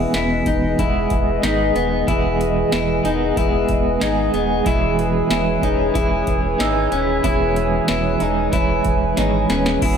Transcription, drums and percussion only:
0.14 snare, closed hi-hat
0.46 kick, closed hi-hat
0.79 kick, closed hi-hat
1.10 kick, closed hi-hat
1.43 snare, closed hi-hat
1.76 closed hi-hat
2.08 kick, closed hi-hat
2.41 closed hi-hat
2.72 snare, closed hi-hat
3.05 closed hi-hat
3.37 kick, closed hi-hat
3.69 kick, closed hi-hat
4.01 snare, closed hi-hat
4.34 closed hi-hat
4.66 kick, closed hi-hat
4.99 closed hi-hat
5.30 snare, closed hi-hat
5.63 kick, closed hi-hat
5.95 kick, closed hi-hat
6.27 kick, closed hi-hat
6.60 snare, closed hi-hat
6.92 closed hi-hat
7.24 kick, closed hi-hat
7.56 closed hi-hat
7.88 snare, closed hi-hat
8.20 closed hi-hat
8.53 kick, closed hi-hat
8.85 kick, closed hi-hat
9.17 snare, closed hi-hat
9.50 snare, closed hi-hat
9.66 snare
9.82 kick, crash

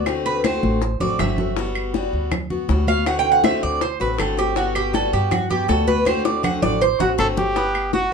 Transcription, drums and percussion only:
0.06 high bongo, claves
0.25 high bongo, high conga
0.44 high bongo, high conga, claves
0.63 high bongo, high conga
0.82 high bongo
1.00 low conga
1.19 high bongo, low bongo, low conga, claves
1.38 high bongo, low conga
1.56 high bongo, high conga
1.75 high conga, claves
1.94 high bongo, high conga
2.13 high conga
2.32 high bongo, high conga, low conga, claves
2.50 high conga, low conga
2.69 high bongo, low bongo, high conga
2.88 high conga
3.06 high bongo, claves
3.25 high bongo, high conga
3.44 high bongo, high conga, claves
3.63 high bongo, high conga
3.81 high bongo, high conga
4.00 high conga
4.18 high bongo, low bongo, high conga, claves
4.37 high bongo, high conga
4.56 high bongo, high conga
4.75 high conga, claves
4.94 high bongo, high conga
5.13 high conga
5.31 high bongo, high conga, low conga, claves
5.51 high conga, low conga
5.69 high bongo, low bongo, high conga
5.88 high conga
6.06 high bongo, high conga, claves
6.25 high bongo
6.44 low conga, claves
6.62 high bongo, low conga
6.82 low bongo
7.00 low bongo, low conga
7.19 low bongo, claves
7.37 low bongo, low conga
7.56 high bongo, high conga
7.75 high conga, claves
7.93 high bongo, high conga

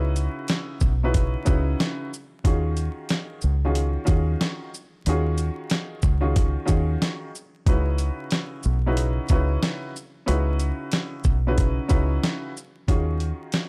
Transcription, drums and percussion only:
0.16 closed hi-hat, shaker
0.48 snare, closed hi-hat
0.80 kick, shaker
1.14 kick, closed hi-hat
1.46 kick, closed hi-hat, shaker
1.80 snare, closed hi-hat
2.14 shaker
2.45 kick, closed hi-hat
2.77 closed hi-hat, shaker
3.09 snare, closed hi-hat
3.41 shaker
3.75 closed hi-hat
4.07 kick, closed hi-hat, shaker
4.41 snare, closed hi-hat
4.74 shaker
5.06 closed hi-hat
5.38 closed hi-hat, shaker
5.70 snare, closed hi-hat
6.02 kick, shaker
6.36 kick, closed hi-hat
6.68 kick, closed hi-hat, shaker
7.02 snare, closed hi-hat
7.35 shaker
7.67 kick, closed hi-hat
7.98 closed hi-hat, shaker
8.31 snare, closed hi-hat
8.63 shaker
8.97 closed hi-hat
9.29 kick, closed hi-hat, shaker
9.63 snare, closed hi-hat
9.96 shaker
10.28 closed hi-hat
10.59 closed hi-hat, shaker
10.91 snare, closed hi-hat
11.24 kick, shaker
11.58 kick, closed hi-hat
11.89 kick, closed hi-hat, shaker
12.23 snare, closed hi-hat
12.57 shaker
12.88 kick, closed hi-hat
13.20 closed hi-hat
13.52 snare, closed hi-hat

